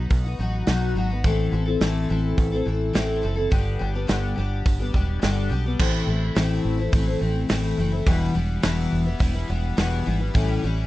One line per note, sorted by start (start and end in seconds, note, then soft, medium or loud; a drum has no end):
0.00 0.25 F#3 medium
0.00 0.25 B3 medium
0.00 0.25 D#4 medium
0.00 0.23 F#4 medium
0.10 0.37 B1 medium
0.10 kick medium
0.10 open hi-hat soft
0.24 0.38 B3 soft
0.24 0.39 D#4 medium
0.24 0.39 F#4 medium
0.39 0.66 A1 medium
0.39 0.67 F#3 medium
0.39 0.68 B3 medium
0.39 0.68 D#4 medium
0.39 0.69 F#4 medium
0.67 0.94 B1 medium
0.67 0.96 B2 medium
0.67 0.94 F#3 medium
0.67 0.95 B3 medium
0.67 0.96 D#4 medium
0.67 0.97 F#4 medium
0.67 snare loud
0.67 open hi-hat soft
0.95 1.22 G#1 medium
0.95 1.10 F#3 medium
0.95 1.10 B3 medium
0.95 1.10 D#4 medium
0.95 1.09 F#4 medium
1.10 1.25 B3 soft
1.10 1.25 D#4 soft
1.10 1.24 F#4 medium
1.24 1.51 A1 medium
1.24 1.53 A2 medium
1.24 1.50 E3 medium
1.24 1.51 C4 medium
1.24 1.52 E4 medium
1.24 1.53 A4 medium
1.24 kick loud
1.24 open hi-hat soft
1.51 1.79 A1 medium
1.51 1.66 E3 medium
1.51 1.67 C4 medium
1.51 1.66 E4 medium
1.51 1.64 A4 medium
1.66 1.80 C4 soft
1.66 1.81 E4 soft
1.66 1.80 A4 medium
1.81 2.08 A1 medium
1.81 2.09 A2 medium
1.81 2.07 E3 medium
1.81 2.09 C4 medium
1.81 2.09 E4 medium
1.81 2.10 A4 medium
1.81 snare loud
1.81 open hi-hat soft
2.09 2.36 A1 medium
2.09 2.52 E3 medium
2.09 2.52 C4 medium
2.09 2.52 E4 medium
2.09 2.51 A4 medium
2.38 2.65 A1 medium
2.38 kick medium
2.38 open hi-hat soft
2.52 2.65 C4 medium
2.52 2.67 E4 medium
2.52 2.66 A4 medium
2.65 2.93 A1 medium
2.65 2.93 E3 medium
2.65 2.94 C4 medium
2.65 2.94 E4 medium
2.65 2.94 A4 medium
2.93 3.22 A1 medium
2.93 3.23 A2 medium
2.93 3.21 E3 medium
2.93 3.22 C4 medium
2.93 3.22 E4 medium
2.93 3.24 A4 medium
2.93 snare loud
2.93 open hi-hat soft
3.22 3.51 F#1 medium
3.22 3.37 E3 medium
3.22 3.37 C4 medium
3.22 3.36 E4 medium
3.22 3.34 A4 medium
3.35 3.51 C4 soft
3.35 3.52 E4 medium
3.35 3.51 A4 medium
3.51 3.79 G1 medium
3.51 3.80 G2 medium
3.51 3.80 D3 medium
3.51 3.78 G3 medium
3.51 3.79 B3 medium
3.51 3.80 D4 medium
3.51 3.80 G4 loud
3.51 kick loud
3.51 open hi-hat soft
3.79 4.07 G1 medium
3.79 3.94 G3 medium
3.79 3.94 B3 medium
3.79 3.94 D4 medium
3.79 3.92 G4 medium
3.94 4.07 G3 medium
3.94 4.08 B3 soft
3.94 4.08 D4 soft
3.94 4.08 G4 medium
4.07 4.36 G1 medium
4.07 4.36 G2 medium
4.07 4.37 D3 medium
4.07 4.34 G3 medium
4.07 4.36 B3 medium
4.07 4.37 D4 medium
4.07 4.37 G4 medium
4.07 snare loud
4.07 open hi-hat medium
4.36 4.64 G1 medium
4.36 4.79 G3 medium
4.36 4.80 B3 medium
4.36 4.79 D4 medium
4.36 4.78 G4 medium
4.66 4.93 G1 medium
4.66 kick loud
4.66 open hi-hat soft
4.79 4.92 G3 soft
4.79 4.93 B3 medium
4.79 4.94 D4 medium
4.79 4.94 G4 medium
4.93 5.21 E1 medium
4.93 5.21 G3 medium
4.93 5.21 B3 medium
4.93 5.22 D4 medium
4.93 5.22 G4 medium
4.93 kick medium
5.22 5.49 G1 medium
5.22 5.51 G2 medium
5.22 5.51 D3 medium
5.22 5.48 G3 medium
5.22 5.50 B3 medium
5.22 5.50 D4 medium
5.22 5.51 G4 medium
5.22 snare medium
5.22 open hi-hat soft
5.50 5.78 B1 medium
5.50 5.64 G3 medium
5.50 5.65 B3 medium
5.50 5.65 D4 medium
5.50 5.64 G4 medium
5.65 5.80 G3 soft
5.65 5.80 B3 soft
5.65 5.80 D4 soft
5.65 5.79 G4 medium
5.79 6.02 A1 medium
5.79 6.08 A2 medium
5.79 6.06 E3 medium
5.79 6.07 A3 medium
5.79 6.08 C4 medium
5.79 6.09 E4 medium
5.79 kick loud
5.79 crash loud
6.07 6.29 A1 medium
6.07 6.35 E3 medium
6.07 6.35 A3 medium
6.07 6.36 C4 medium
6.07 6.36 E4 medium
6.35 6.58 A1 medium
6.35 6.78 A2 medium
6.35 6.79 E3 medium
6.35 6.79 A3 medium
6.35 6.78 C4 medium
6.35 6.76 E4 medium
6.35 snare loud
6.35 open hi-hat soft
6.65 6.87 A1 medium
6.77 6.92 A3 soft
6.77 6.93 C4 medium
6.77 6.92 E4 medium
6.92 7.15 A1 medium
6.92 7.07 E3 medium
6.92 7.07 A3 medium
6.92 7.06 C4 medium
6.92 7.05 E4 medium
6.92 kick loud
6.92 open hi-hat medium
7.06 7.19 A3 medium
7.06 7.20 C4 medium
7.06 7.21 E4 soft
7.19 7.44 A1 medium
7.19 7.48 E3 medium
7.19 7.48 A3 medium
7.19 7.49 C4 medium
7.19 7.49 E4 medium
7.49 7.72 A1 medium
7.49 7.78 A2 medium
7.49 7.76 E3 medium
7.49 7.77 A3 medium
7.49 7.78 C4 medium
7.49 7.79 E4 medium
7.49 snare loud
7.49 open hi-hat medium
7.77 8.00 F#1 medium
7.77 7.92 E3 medium
7.77 7.93 A3 medium
7.77 7.92 C4 medium
7.77 7.91 E4 medium
7.92 8.07 A3 soft
7.92 8.07 C4 medium
7.92 8.06 E4 medium
8.06 8.29 E1 loud
8.06 8.35 E2 medium
8.06 8.35 B2 medium
8.06 8.33 E3 medium
8.06 8.34 G3 loud
8.06 8.35 B3 medium
8.06 8.36 E4 medium
8.06 kick loud
8.06 open hi-hat medium
8.34 8.57 E1 medium
8.34 8.62 E3 medium
8.34 8.63 G3 medium
8.34 8.63 B3 medium
8.34 8.64 E4 medium
8.62 8.86 E1 medium
8.62 9.06 E2 medium
8.62 9.06 B2 medium
8.62 9.06 E3 medium
8.62 9.06 G3 medium
8.62 9.05 B3 medium
8.62 9.04 E4 medium
8.62 snare loud
8.62 open hi-hat medium
8.92 9.15 E1 medium
9.05 9.18 E3 soft
9.05 9.19 G3 soft
9.05 9.20 B3 medium
9.05 9.20 E4 medium
9.19 9.43 E1 medium
9.19 9.34 E3 medium
9.19 9.34 G3 medium
9.19 9.33 B3 medium
9.19 9.32 E4 medium
9.19 kick loud
9.19 open hi-hat medium
9.33 9.46 E3 medium
9.33 9.47 G3 soft
9.33 9.48 B3 soft
9.33 9.48 E4 medium
9.47 9.72 E1 medium
9.47 9.76 E3 medium
9.47 9.77 G3 medium
9.47 9.77 B3 medium
9.47 9.77 E4 medium
9.77 10.00 E1 medium
9.77 10.06 E2 medium
9.77 10.06 B2 medium
9.77 10.04 E3 medium
9.77 10.05 G3 medium
9.77 10.07 B3 loud
9.77 10.07 E4 medium
9.77 snare loud
9.77 open hi-hat medium
10.06 10.29 G#1 medium
10.06 10.20 E3 medium
10.06 10.21 G3 medium
10.06 10.19 B3 medium
10.06 10.18 E4 medium
10.20 10.33 E3 soft
10.20 10.34 G3 soft
10.20 10.35 B3 medium
10.20 10.34 E4 medium
10.34 10.57 A1 loud
10.34 10.63 A2 medium
10.34 10.62 E3 medium
10.34 10.63 G3 medium
10.34 10.64 C#4 medium
10.34 10.64 E4 loud
10.34 kick loud
10.34 open hi-hat medium
10.63 10.86 A1 medium
10.63 10.87 E3 medium
10.63 10.87 G3 medium
10.63 10.87 C#4 medium
10.63 10.87 E4 medium